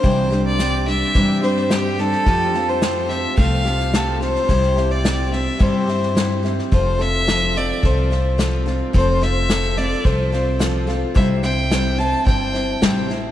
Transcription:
<<
  \new Staff \with { instrumentName = "Fiddle" } { \time 4/4 \key f \lydian \tempo 4 = 108 c''8. d''8. e''4 c''8 g'8 a'8~ | a'8. c''8. e''8 f''4 a'8 c''8~ | c''8. d''8. e''8 c''4. r8 | c''8 e''4 d''8 c''4. r8 |
c''8 e''4 d''8 c''4. r8 | e''8 g''4 a''8 g''4. r8 | }
  \new Staff \with { instrumentName = "Steel-string acoustic guitar" } { \time 4/4 \key f \lydian <c e g c' d' g'>8 <g c' d' g'>8 <g c' d' g'>8 <g c' d' g'>8 <c e g c' d' g'>8 <g c' d' g'>8 <g c' d' g'>8 <g c' d' g'>8 | <f a c' f' g'>8 <c' f' g'>8 <a c' f' g'>8 <c' f' g'>8 <f a c' f' g'>8 <c' f' g'>8 <a c' f' g'>8 <c' f' g'>8 | <c g c' e' g'>8 <c' e' g'>8 <g c' e' g'>8 <c' e' g'>8 <c g c' e' g'>8 <c' e' g'>8 <g c' e' g'>8 <c' e' g'>8 | <f c' f' a'>8 <c' f' a'>8 <f c' f' a'>8 <c' f' a'>8 <f c' f' a'>8 <c' f' a'>8 <f c' f' a'>8 <c' f' a'>8 |
<f c' f' a'>8 <c' f' a'>8 <f c' f' a'>8 <c' f' a'>8 <f c' f' a'>8 <c' f' a'>8 <f c' f' a'>8 <c' f' a'>8 | <c g c' e' c''>8 <c' e' c''>8 <c g c' e' c''>8 <c' e' c''>8 <g c' e' c''>8 <c' e' c''>8 <c g c' e' c''>8 <c' e' c''>8 | }
  \new Staff \with { instrumentName = "Upright bass" } { \clef bass \time 4/4 \key f \lydian c,2 g,2 | f,2 c,2 | c,2 g,2 | f,,2 c,2 |
f,,2 c,2 | c,2 g,,4 a,,4 | }
  \new DrumStaff \with { instrumentName = "Drums" } \drummode { \time 4/4 <bd sn>8 sn8 <hhp sn>8 sn8 <bd sn>8 sn16 sn16 <hhp sn>8 sn16 sn16 | <bd sn>8 sn8 <hhp sn>8 sn8 <bd sn>8 sn16 sn16 <hhp sn>8 sn16 sn16 | <bd sn>16 sn16 sn8 <hhp sn>8 sn8 <bd sn>8 sn16 sn16 <hhp sn>8 sn16 sn16 | <bd sn>8 sn8 <hhp sn>8 sn8 <bd sn>8 sn8 <hhp sn>8 sn8 |
<bd sn>8 sn8 <hhp sn>8 sn8 <bd sn>8 sn8 <hhp sn>8 sn8 | <bd sn>8 sn8 <hhp sn>8 sn8 <bd sn>8 sn8 <hhp sn>8 sn8 | }
>>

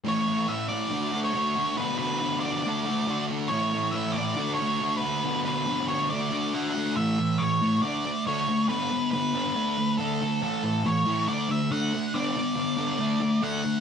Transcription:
<<
  \new Staff \with { instrumentName = "Lead electric guitar" } { \time 4/4 \key d \lydian \tempo 4 = 139 cis''4 e''8 d''4~ d''16 cis''4~ cis''16 | b'8 b'4 d''2 r8 | cis''4 e''8 d''4 cis''4 b'8~ | b'8 b'4 cis''8 d''4 fis''4 |
e''4 cis''4 d''4 cis''4 | b'4 b'2 a'4 | a'4 cis''4 d''8 e''8 fis''4 | d''2. fis''4 | }
  \new Staff \with { instrumentName = "Distorted electric guitar" } { \time 4/4 \key d \lydian <a, e a cis' e'>8 <a cis' e'>8 <a, e a cis' e'>8 <a cis' e'>8 <d a d' fis'>8 <d a d' fis'>8 <d a d' fis'>8 <a d' fis'>8 | <d b d' fis'>8 <b d' fis'>8 <d b d' fis'>8 <b d' fis'>8 <d a d' fis'>8 <d a d' fis'>8 <d a d' fis'>8 <a d' fis'>8 | <a, e a cis' e'>8 <a cis' e'>8 <a, e a cis' e'>8 <a cis' e'>8 <d a d' fis'>8 <d a d' fis'>8 <d a d' fis'>8 <a d' fis'>8 | <d b d' fis'>8 <b d' fis'>8 <d b d' fis'>8 <b d' fis'>8 <d a d' fis'>8 <d a d' fis'>8 <d a d' fis'>8 <a d' fis'>8 |
<a, e a>8 <a, e>8 <a, e>8 <a, e a>8 <d a d'>8 <d a>8 <d a d'>8 <d a>8 | <d b d'>8 <d b>8 <d b>8 <d b d'>8 <d a d'>8 <d a>8 <d a d'>8 <d a>8 | <a, e a>8 <a, e>8 <a, e>8 <a, e a>8 <d a d'>8 <d a>8 <d a d'>8 <d a>8 | <d b d'>8 <d b>8 <d b>8 <d b d'>8 <d a d'>8 <d a>8 <d a d'>8 <d a>8 | }
>>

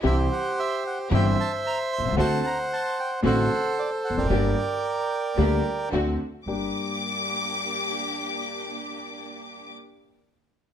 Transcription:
<<
  \new Staff \with { instrumentName = "Violin section" } { \time 4/4 \key g \minor \tempo 4 = 112 r1 | r1 | r1 | d'''1~ |
d'''1 | }
  \new Staff \with { instrumentName = "Bandoneon" } { \time 4/4 \key g \minor << { e''8 fis''8 e''8 fis''8 g''8 a''8 bes''8 c'''8 | a''8 bes''8 a''8 g''8 fis''4 d''8 fis''16 g''16~ | g''2. r4 | r1 |
r1 | } \\ { <g' c''>2 <c'' e''>2 | <c'' fis''>2 <a' c''>4.~ <a' c''>16 <bes' d''>16~ | <bes' d''>2. r4 | r1 |
r1 | } >> }
  \new Staff \with { instrumentName = "String section" } { \time 4/4 \key g \minor <c' e' g'>8 r4. <c' e' g'>8 r4. | <c' d' fis'>8 r4. <c' d' fis'>8 r4. | <bes d' g'>8 r4. <bes d' g'>8 r8 <c' d' fis'>8 r8 | <bes d' g'>1~ |
<bes d' g'>1 | }
  \new Staff \with { instrumentName = "Grand piano" } { \clef bass \time 4/4 \key g \minor <c, c e g c' g'>8 r4. <g,, g, e g c' g'>8 r4 r32 b,,32 c,32 cis,32 | <d, d a c' fis'>8 r4. <a,, a, d a c' fis'>8 r4 r32 e,32 f,32 fis,32 | <g,, g, d g bes g'>8 r4. <d, d g bes g'>8 r8 <d, d a c' fis'>8 r8 | <g, bes d' g'>1~ |
<g, bes d' g'>1 | }
  \new Staff \with { instrumentName = "Upright bass" } { \clef bass \time 4/4 \key g \minor c,16. r4. r32 g,,16. r4 r16 b,,32 c,32 cis,32 | d,16. r4. r32 a,,16. r4 r16 e,,32 f,,32 fis,,32 | g,,16. r4. r32 d,16. r8 r32 d,16. r8 r32 | g,,8 r2. r8 |
r1 | }
>>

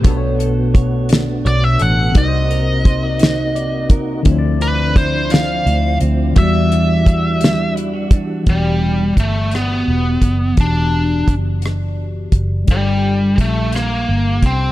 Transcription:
<<
  \new Staff \with { instrumentName = "Lead electric guitar" } { \time 6/8 \key e \minor \tempo 4. = 57 r2 d''16 e''16 fis''8 | ees''2~ ees''8 r8 | r8 b'8 c''8 f''4 r8 | e''2 r4 |
\key g \mixolydian g4 a8 b4. | d'4 r2 | g4 a8 bes4 c'8 | }
  \new Staff \with { instrumentName = "Clean electric guitar" } { \time 6/8 \key e \minor <b cis''>8 a'8 cis''8 d'8 cis''8 a'8 | <c' d''>8 bes'8 c''16 d''16 ees'8 d''8 bes'8 | <d e'>8 c'8 e'8 f8 e'8 c'8 | <e fis'>8 d'8 fis'8 g8 e'16 fis'16 d'8 |
\key g \mixolydian r2. | r2. | r2. | }
  \new Staff \with { instrumentName = "Tine electric piano" } { \time 6/8 \key e \minor <b, b d' a' b' cis''>2. | <c c' ees' bes' c''>2. | <d f c' d' cis'' d''>2. | <e g b fis' d''>2. |
\key g \mixolydian <e b fis' g' d''>2. | <e b fis' g' d''>2. | <g d' f' g' a'>2. | }
  \new Staff \with { instrumentName = "Tonewheel organ" } { \time 6/8 \key e \minor <a b fis'>2. | <c bes ees'>2. | <d f c' d'>2. | <e g d' fis'>2. |
\key g \mixolydian r2. | r2. | r2. | }
  \new Staff \with { instrumentName = "Fingered electric bass" } { \clef bass \time 6/8 \key e \minor b,,2 b,,8 a,,8 | c,2. | d,2 d,8 d,8 | e,2. |
\key g \mixolydian e,,4 g,,4 e,,8 fis,,8 | e,,4 fis,,4. fis,,8 | g,,4 bes,,4 g,,8 c,8 | }
  \new DrumStaff \with { instrumentName = "Drums" } \drummode { \time 6/8 <hh bd>8 hh8 <hh bd>8 <hh sn>8 hh8 hh8 | <hh bd>8 hh8 <hh bd>8 <hh sn>8 hh8 <hh bd>8 | <hh bd>8 hh8 <hh bd>8 <hh sn>8 hh8 hh8 | <hh bd>8 hh8 <hh bd>8 <hh sn>8 hh8 <hh bd>8 |
<hh bd>4 <hh bd>8 <hh ss>4 <hh bd>8 | <hh bd>4 <hh bd>8 <hh ss>4 <hh bd>8 | <hh bd>4 <hh bd>8 <hh ss>4 <hh bd>8 | }
>>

